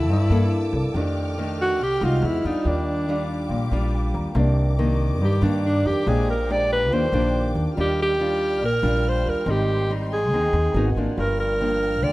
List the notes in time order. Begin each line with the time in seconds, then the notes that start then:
Already playing: E4 A4 D5 A5 D6 E6
0.09 G2 E4
0.30 G2 A#3 E4 A4
0.73 C2 E4 A4 A#4 D5
0.94 F2 D#3 A3 D4 G4 A4 G5 F6
0.98 D5
1.38 D#3 A3 D4
1.61 F#4
1.80 C2 C3 G4
2.01 C2 G#3 D#4 F4 F#4
2.22 E2 E4 G#4 B4 D#5 F#5
2.44 E2 G3 D4 D#4 F4
2.62 D#2 F4 G4 F5 D6
2.67 D#3 D4 A#4 D5
3.09 G3 D4 F4
3.49 A#1 A#2
3.71 A#1 G3 D4 F4 F5
3.94 G5
4.14 D#2 A#5
4.35 C2 C3 D#3 A#3 D4 G4 A#4 D6
4.39 D5
4.79 D#3 A#3 D4
5.20 G2 G4
5.42 G2 D#3 A#3 D4
5.63 D4 G4 A#4 D5
5.85 F2 G4
6.03 A#1 A#2 G#3 G4 C5 G5 A#5
6.07 D4 G4 G#4 C5 D5
6.30 A#4
6.49 G#3 D4 G4 D5
6.73 B4
6.88 D#2 D#3 A#3 F4 G4 A#4
6.93 D4 G4 C5 D5 G5 D6
7.12 A#1 A#3 D4 G4
7.55 D#2
7.74 D#2 D#3 G3 F4 G4 D5 G5 F6
7.78 D4 F4 G4 A#4 D5
8.02 G4
8.20 G3 D4 F4
8.62 A#1 A#2 A#4
8.82 A#1 G3 D4 F4
9.09 C5
9.24 D#2 F4 G4 A#4 D5
9.29 A#4
9.44 G#1 G#2 G3 C4 D#4 A#4 C5 G5 C6
9.50 G4 D#5
9.90 G3 C4 D#4
10.13 G#4
10.32 D#2 D#3 C4 D#4
10.53 D#2
10.74 G#1 F#3 B3 D#4 F#4 A#4 B4 D#5 F#5 G#5
10.96 G#1 F3 A#3 D4
11.15 G1 G2 F4 G4 A#4 G5 F6
11.20 A#4 D5
11.40 A#4
11.61 F3 A#3 D4
12.03 D2 D3 D5